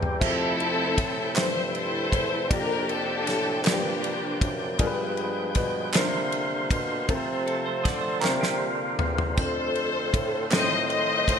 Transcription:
Already playing: E2 E3 G3 C4 G4 A5 A#5 C6 D6 E6
0.02 G5, floor tom
0.20 F2 C3 F3 A3 C4 E4 G4 G#4 A4 C5 E5 G5, kick, crash
0.27 A4
0.60 ride
0.98 A2, kick, ride
1.34 G2 F3 G4 A4 C5 E5, snare, clap, ride
1.74 E4 A4 C5, ride
2.12 E2, kick, ride
2.49 F2 F3 A#3 D4 F4 G4 A#4 D5, kick, ride
2.89 D4 A4, ride
3.27 A2, snare, ride
3.64 G2 A#3 D4 F4 G4 A#4 B4, snare, clap, ride
3.69 G4 C5
4.04 ride
4.41 F#2, kick, ride
4.78 G2 F3 G#3 B3 D4 F4 G4 G#4 A#4, kick, ride
4.86 B4
5.17 ride
5.55 B2, kick, ride
5.92 C3 D3 A#3 D4 F4 G4 A#4 C5, snare, clap, ride
6.32 ride
6.71 B2, kick, ride
7.08 C3 F3 A3 C4 F4 A4 A#4, kick, ride
7.15 C5
7.47 A4, ride
7.66 C5
7.84 D3 D5, kick, snare, ride
8.01 C5
8.20 C3 D3 A#3 C4 D4 F4 G4 A#4, clap
8.24 snare
8.41 G4, snare
8.99 E2, floor tom
9.18 floor tom
9.35 F2 A3 C4 D4 F4 A4 C5, kick, splash
9.39 A4 C5
9.75 ride
10.14 A2, kick, ride
10.50 A2 D#3 A3 C4 D#4 F4 A4 A#4 C5 D#5, snare, clap, ride
10.58 C5
10.89 C5 D#5, ride
11.28 A2, kick, ride

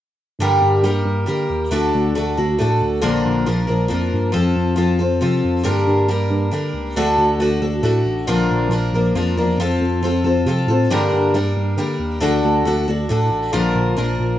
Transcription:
0.39 G2 D3 G3 A#3 G4 A#4
0.61 G2
0.83 G2 G3 A#3 G4 A#4
1.05 G2
1.26 D3 G3 A#3 G4 A#4
1.49 D#2
1.71 D2 D3 A3 D4 F#4 A4
1.94 D2
2.15 D2 A3 D4 F#4 A4
2.37 D2 D4 F#4 A4
2.58 A2 A3 D4 F#4 A4
2.81 D2
3.02 A#1 A#2 D3 F3 A#3 D4 A#4
3.25 A#1
3.46 A#1 F3 A#3 D4 A#4
3.67 A#1 F3 A#3 D4 A#4
3.88 F2 F3 A#3 D4 A#4
4.13 G2
4.32 F2 F3 C4 F4 A4
4.56 F2
4.76 F2 F3 C4 F4 A4
4.99 F2 C4 F4 A4
5.21 C3 F3 C4 F4 A4
5.44 F2
5.63 G2 D3 G3 A#3 D4 A#4
5.86 G2
6.08 G2 G3 A#3 D4 A#4
6.30 G2
6.51 D3 G3 A#3 D4 A#4
6.73 C#2
6.96 D2 D3 A3 D4 F#4 A4
7.17 D2
7.39 D2 A3 D4 F#4 A4
7.61 D2 D4 F#4 A4
7.82 A2 A3 D4 F#4 A4
8.05 A1
8.27 A#1 A#2 D3 F3 A#3 D4 A#4
8.49 A#1
8.70 A#1 F3 A#3 D4 A#4
8.92 A#1 A#3 D4 A#4
8.96 F3
9.15 F2 F3 A#3 D4 A#4
9.36 E2 F3 A#3 D4 A#4
9.58 F2 F3 C4 F4 A4
9.80 F2
10.02 F2 F3 C4 F4 A4
10.24 F2 C4 F4 A4
10.46 C3 F3 C4 F4 A4
10.67 A2 C4 F4 A4
10.90 G2 D3 G3 A#3 D4 A#4
11.13 G2
11.34 G2 G3 A#3 D4 A#4
11.56 G2
11.77 D3 G3 A#3 D4 A#4
11.99 D#2
12.20 D2 D3 A3 D4 F#4 A4
12.44 D2
12.65 D2 A3 D4 F#4 A4
12.87 D2 D4 F#4 A4
13.09 A2 A3 D4 F#4 A4
13.31 A1
13.53 A#1 A#2 D3 F3 A#3 D4 A#4
13.75 A#1
13.97 A#1 F3 A#3 D4 A#4
14.19 A#1

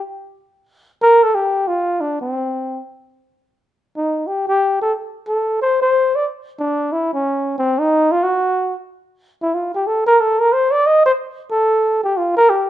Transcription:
1.02 A#4
1.23 A4
1.35 G4
1.68 F4
2.01 D4
2.21 C4
3.96 D#4
4.27 G4
4.48 G4
4.82 A4
5.28 A4
5.62 C5
5.82 C5
6.16 D5
6.60 D4
6.92 E4
7.14 C#4
7.58 C4
7.79 D#4
8.12 F4
8.23 F#4
9.42 E4
9.55 F4
9.75 G4
9.87 A4
10.06 A#4
10.20 A4
10.39 A#4
10.53 C5
10.72 D5
10.87 D#5
11.06 C5
11.51 A4
12.04 G4
12.17 F4
12.36 A#4
12.50 G4

